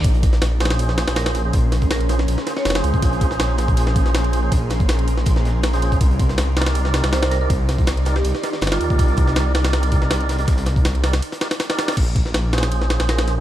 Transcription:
<<
  \new Staff \with { instrumentName = "Marimba" } { \time 4/4 \key bes \dorian \tempo 4 = 161 r2. bes'16 bes'16 r8 | r4 bes'8 r4 r16 des''4 r16 | r1 | r1 |
r2. c''16 c''16 bes'16 bes'16 | r4. r16 g'8 r4 f'8.~ | f'8. r2. r16 | r1 |
r2. bes'16 bes'16 r8 | }
  \new Staff \with { instrumentName = "Ambient pad" } { \time 4/4 \key bes \dorian << { <bes' c'''>1~ | <bes' c'''>1~ | <bes' c'''>1~ | <bes' c'''>1~ |
<bes' c'''>1~ | <bes' c'''>1~ | <bes' c'''>1~ | <bes' c'''>1 |
r1 | } \\ { <des' aes'>1~ | <des' aes'>1~ | <des' aes'>1~ | <des' aes'>1 |
<ees' d''>1~ | <ees' d''>1~ | <ees' d''>1~ | <ees' d''>1 |
r1 | } >> }
  \new Staff \with { instrumentName = "Tonewheel organ" } { \time 4/4 \key bes \dorian r4. <des' f' aes' c''>2~ <des' f' aes' c''>16 <des' f' aes' c''>16 | r4. <des' f' aes' c''>16 r8. <des' f' aes' c''>16 r8 <des' f' aes' c''>8.~ | <des' f' aes' c''>4. <des' f' aes' c''>2~ <des' f' aes' c''>16 <des' f' aes' c''>16 | r2. r16 <des' f' aes' c''>8. |
r4. <ees' g' bes' d''>2~ <ees' g' bes' d''>16 <ees' g' bes' d''>16 | r4. <ees' g' bes' d''>16 r8. <ees' g' bes' d''>16 r8 <ees' g' bes' d''>8.~ | <ees' g' bes' d''>4. <ees' g' bes' d''>2~ <ees' g' bes' d''>16 <ees' g' bes' d''>16 | r4. <ees' g' bes' d''>16 r8. <ees' g' bes' d''>16 r8 <ees' g' bes' d''>8. |
r4. <des' f' aes' c''>2~ <des' f' aes' c''>16 r16 | }
  \new Staff \with { instrumentName = "Detuned saw bass" } { \clef bass \time 4/4 \key bes \dorian bes,,4 bes,,4.~ bes,,16 bes,,4~ bes,,16 | bes,,4 bes,,4 bes,,16 r8. f,,8 des,16 des,16 | bes,,4 bes,,4.~ bes,,16 bes,,4~ bes,,16 | bes,,4 bes,,4 bes,,2 |
c,4 c,4.~ c,16 c,4~ c,16 | c,4 c,4 c,16 r8. g,,8 ees,16 ees,16 | c,4 c,4.~ c,16 c,4~ c,16 | c,4 c,4 r2 |
bes,,4 bes,,4.~ bes,,16 bes,,4~ bes,,16 | }
  \new DrumStaff \with { instrumentName = "Drums" } \drummode { \time 4/4 <hh bd cymr>16 hh16 <hh bd cymr>16 <hh sn>16 <hh cymr sn>8 <hh cymr sn>32 <cymr sn>32 <hh cymr sn>16 <hh cymr>16 sn16 <hh cymr sn>16 <hh cymr sn>16 <hh cymr sn>16 <cymr sn>16 <hh cymr sn>8 | <hh bd cymr>8 <hh cymr sn>16 <hh bd>16 <hh cymr sn>16 cymr16 <hh cymr sn>16 sn16 <hh cymr>16 sn16 <hh cymr sn>16 sn16 <hh cymr sn>32 <cymr sn>32 <cymr sn>16 <hh cymr>16 <hh bd>16 | <hh bd cymr>16 hh16 <hh bd cymr>16 <hh sn>16 <hh cymr sn>8 <hh cymr sn>16 <hh bd>16 <hh cymr>16 sn16 <hh bd cymr>16 <hh sn>16 <hh cymr sn>16 <cymr sn>16 <hh cymr>8 | <hh bd cymr>8 <hh cymr sn>16 <hh bd>16 <hh cymr sn>16 cymr16 <hh cymr>16 sn16 <hh bd cymr>16 sn16 <hh sn>8 <hh cymr sn>16 <hh sn>16 cymr16 <hh bd>16 |
<hh bd cymr>16 hh16 <hh bd cymr>16 <hh sn>16 <hh cymr sn>8 <hh cymr sn>32 <cymr sn>32 <hh cymr sn>16 <hh cymr>16 sn16 <hh cymr sn>16 <hh cymr sn>16 <hh cymr sn>16 <cymr sn>16 <hh cymr sn>8 | <hh bd cymr>8 <hh cymr sn>16 <hh bd>16 <hh cymr sn>16 cymr16 <hh cymr sn>16 sn16 <hh cymr>16 sn16 <hh cymr sn>16 sn16 <hh cymr sn>32 <cymr sn>32 <cymr sn>16 <hh cymr>16 <hh bd>16 | <hh bd cymr>16 hh16 <hh bd cymr>16 <hh sn>16 <hh cymr sn>8 <cymr sn>16 <hh cymr sn>16 <cymr sn>16 cymr16 <hh bd cymr>16 sn16 <hh cymr sn>16 <cymr sn>16 <hh cymr sn>16 <hh sn>16 | <hh bd cymr sn>16 <hh sn>16 <hh cymr sn>16 <hh bd>16 <hh cymr sn>16 cymr16 <hh cymr sn>16 <hh cymr sn>16 <hh cymr>16 <hh sn>16 <cymr sn>16 <hh cymr sn>16 <hh cymr sn>16 <hh cymr sn>16 <hh cymr sn>16 <hh cymr sn>32 <hh sn>32 |
<cymc bd cymr>8 <bd cymr>16 sn16 <cymr sn>8 <cymr sn>32 <cymr sn>32 <cymr sn>16 cymr16 sn16 <cymr sn>16 <cymr sn>16 <cymr sn>16 <cymr sn>16 <cymr sn>8 | }
>>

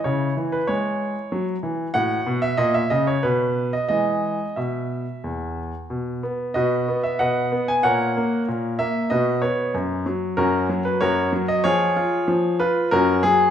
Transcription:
<<
  \new Staff \with { instrumentName = "Grand piano" } { \time 3/4 \key e \major \tempo 4 = 94 << { cis''8. b'16 cis''2 | fis''8. e''16 dis''16 e''16 dis''16 cis''16 b'8. dis''16 | dis''4 e''4. r8 | \key b \major r4 <fis' b' dis''>8. e''16 <b' dis'' fis''>8. gis''16 |
<ais' cis'' fis''>4. e''8 <fis' b' dis''>8 cis''8 | r4 <cis' fis' ais'>8. b'16 <fis' ais' cis''>8. dis''16 | <eis' gis' cis''>4. b'8 <cis' fis' ais'>8 gis'8 | } \\ { e'2. | fis'4 r2 | r2. | r2. |
r2. | r2. | r2. | } >> }
  \new Staff \with { instrumentName = "Grand piano" } { \clef bass \time 3/4 \key e \major cis8 e8 gis4 fis8 e8 | a,8 b,8 ais,8 cis8 b,4 | <e gis gis'>4 b,4 e,4 | \key b \major b,8 b8 b,8 b8 b,8 b8 |
ais,8 ais8 ais,8 ais8 b,8 b8 | fis,8 fis8 fis,8 fis8 fis,8 fis8 | eis8 eis'8 eis8 eis'8 fis,8 fis8 | }
>>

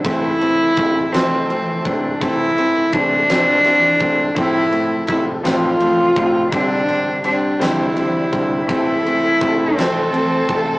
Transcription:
<<
  \new Staff \with { instrumentName = "Violin section" } { \time 6/8 \key a \minor \tempo 4. = 56 r2. | r2. | r2. | r2. |
a'2. | }
  \new Staff \with { instrumentName = "Cello" } { \time 6/8 \key a \minor e'4. c'4 d'8 | e'4 d'2 | e'4 e'8 f'4. | d'4 d'8 e'4. |
e'4. c'4. | }
  \new Staff \with { instrumentName = "Clean electric guitar" } { \time 6/8 \key a \minor <a, e a c' e' a'>8 <a c' e' a'>8 <a c' e' a'>8 <a, e a c' e' a'>8 <a c' e' a'>8 <a c' e' a'>8 | <a, e a c' e' a'>8 <a c' e' a'>8 <a c' e' a'>8 <a, e a c' e' a'>8 <a c' e' a'>8 <a c' e' a'>8 | <a, f a c' a'>8 <a c' a'>8 <a c' a'>8 <a, f a c' f' a'>8 <a c' f' a'>8 <a c' f' a'>8 | <c' d' g' c''>8 <d' g' c''>8 <c' d' g' c''>8 <c' d' g' c''>8 <c' d' g' c''>8 <d' g' c''>8 |
<a, e a c' e' a'>8 <a c' e' a'>8 <a c' e' a'>8 <a, e a c' e' a'>8 <a c' e' a'>8 <a c' e' a'>8 | }
  \new Staff \with { instrumentName = "Grand piano" } { \time 6/8 \key a \minor <e a c'>8 <e a c'>8 <e a c'>8 <e a c'>8 <e a c'>8 <e a c'>8 | <e a c'>8 <e a c'>8 <e a c'>8 <e a c'>8 <e a c'>8 <e a c'>8 | <a, f a c'>8 <a, f a c'>8 <a, f a c'>8 <a, f a c'>8 <a, f a c'>8 <a, f a c'>8 | <d g c'>8 <d g c'>8 <d g c'>8 <d g c'>8 <d g c'>8 <d g c'>8 |
<e a c'>8 <e a c'>8 <e a c'>8 <e a c'>8 <e a c'>8 <e a c'>8 | }
  \new Staff \with { instrumentName = "Tonewheel organ" } { \time 6/8 \key a \minor <a a'>2.~ | <a a'>2.~ | <a a'>2. | <g g'>2. |
<a a'>2. | }
  \new Staff \with { instrumentName = "Tonewheel organ" } { \clef bass \time 6/8 \key a \minor << { e2.~ | e2. | <a, f>2. | d2. |
e2. | } \\ { c2.~ | c2.~ | c2.~ | c2.~ |
c2. | } >> }
  \new DrumStaff \with { instrumentName = "Drums" } \drummode { \time 6/8 <bd cymr>8 cymr8 <bd cymr>8 <cymr sn>8 cymr8 <bd cymr>8 | <bd cymr>8 cymr8 <bd cymr>8 <cymr sn>8 <cymr sn>8 <bd cymr>8 | <bd cymr>8 cymr8 <bd cymr>8 <cymr sn>8 cymr8 <bd cymr>8 | <bd cymr>8 cymr8 cymr8 <cymr sn>8 cymr8 <bd cymr>8 |
<bd cymr>8 cymr8 <bd cymr>8 <cymr sn>8 cymr8 <bd cymr>8 | }
>>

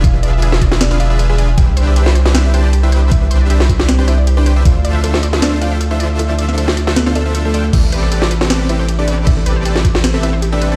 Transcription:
<<
  \new Staff \with { instrumentName = "Synth arpeggio sound" } { \time 4/4 \key a \minor \tempo 4 = 156 gis'16 b'16 d''16 e''16 gis'16 b'16 d''16 e''16 gis'16 b'16 d''16 e''16 gis'16 b'16 d''16 e''16 | g'16 b'16 c''16 d''16 g'16 b'16 c''16 d''16 g'16 b'16 c''16 d''16 g'16 b'16 c''16 d''16 | g'16 b'16 c''16 d''16 g'16 b'16 c''16 d''16 g'16 b'16 c''16 d''16 g'16 b'16 c''16 d''16 | a'16 c''16 d''16 e''16 a'16 c''16 d''16 e''16 a'16 c''16 d''16 e''16 a'16 c''16 d''16 e''16 |
a'16 c''16 d''16 e''16 a'16 c''16 d''16 e''16 a'16 c''16 d''16 e''16 a'16 c''16 d''16 e''16 | g'16 a'16 b'16 c''16 g'16 a'16 b'16 c''16 g'16 a'16 b'16 c''16 g'16 a'16 b'16 c''16 | g'16 a'16 b'16 c''16 g'16 a'16 b'16 c''16 g'16 a'16 b'16 c''16 g'16 a'16 b'16 c''16 | }
  \new Staff \with { instrumentName = "Supersaw synth" } { \time 4/4 \key a \minor <d' f' gis' b' e''>4 <d' f' gis' b' e''>8 r16 <d' f' gis' b' e''>16 r16 <d' f' gis' b' f''>16 <d' f' gis' b' e''>16 <d' f' gis' b' e''>8 <d' f' gis' b' e''>16 <d' f' gis' b' gis''>16 r16 | <d' g' b' c'' e''>4 <d' g' b' c'' e''>8 r16 <d' g' b' c'' e''>8. <d' g' b' c'' a''>8 r16 <d' g' b' c'' e''>16 <d' g' b' c'' e''>8~ | <d' g' b' c'' e''>4 <d' g' b' c'' e''>8 r16 <d' g' b' c'' e''>16 r16 <d' g' b' c'' g''>8 r8 <d' g' b' c'' g''>8 <d' g' b' c'' e''>16 | d'4 <d' f' a' c'' e''>8 r16 <d' f' a' c'' e''>8. <d' f' a' c'' g''>8 r16 <d' f' a' c'' e''>16 <d' f' a' c'' e''>8~ |
<d' f' a' c'' e''>4 <d' f' a' c'' e''>8 r16 <d' f' a' c'' e''>16 r16 <d' f' a' c'' f''>16 <d' f' a' c'' e''>16 <d' f' a' c'' e''>8 <d' f' a' c'' e''>16 <d' f' a' c'' g''>16 r16 | <c' g' a' b' d''>4 <c' g' a' b' d''>8 r16 <c' g' a' b' d''>8. <c' g' a' b' g''>8 r16 <c' g' a' b' d''>16 <c' g' a' b' d''>8~ | <c' g' a' b' d''>4 <c' g' a' b' d''>8 r16 <c' g' a' b' d''>16 r16 <c' g' a' b' e''>8 r8 <c' g' a' b' e''>8 <c' g' a' b' d''>16 | }
  \new Staff \with { instrumentName = "Synth pluck" } { \time 4/4 \key a \minor <f' f''>8 r4. <d' d''>16 r16 <f' f''>8 r16 <gis' gis''>8 r16 | <g' g''>8 r4. <e' e''>16 r16 <g' g''>8 r16 <e' e''>8 r16 | <e' e''>8 r4. <c' c''>16 r16 <e' e''>8 r16 <d' d''>8 r16 | <f' f''>8 r4. <d' d''>16 r16 <f' f''>8 r16 <e' e''>8 r16 |
<e' e''>8 r4. <b b'>16 r16 <a a'>8 r16 <a a'>8 r16 | <e' e''>8 r4. <c' c''>16 r16 <e' e''>8 r16 <d' d''>8 r16 | <e' e''>8 r4. <c' c''>16 r16 <e' e''>8 r16 <d' d''>8 r16 | }
  \new Staff \with { instrumentName = "Sub bass" } { \clef bass \time 4/4 \key a \minor e,,1 | c,1~ | c,1 | d,1~ |
d,1 | a,,1~ | a,,1 | }
  \new DrumStaff \with { instrumentName = "Drums" } \drummode { \time 4/4 <hh bd>8 hh8 hh16 sn16 <hh bd>16 sn16 <hh sn>16 sn16 hh8 hh8 hh8 | <hh bd>8 hh8 hh16 sn16 hh16 sn16 <hh sn>8 hh8 hh8 hh8 | <hh bd>8 hh8 hh16 sn16 <hh bd>16 sn16 <hh sn>8 hh8 hh8 hh8 | <hh bd>8 hh8 hh16 sn16 hh16 sn16 <hh sn>8 hh8 hh8 hh8 |
hh8 hh16 sn16 hh16 sn16 hh16 sn16 <hh sn>16 sn16 hh8 hh8 hh8 | <cymc hh bd>8 hh8 hh16 sn16 hh16 sn16 <cymc hh sn>8 hh8 hh8 hh8 | <cymc hh bd>8 hh8 hh16 sn16 <hh bd>16 sn16 <cymc hh sn>8 hh8 hh8 hh8 | }
>>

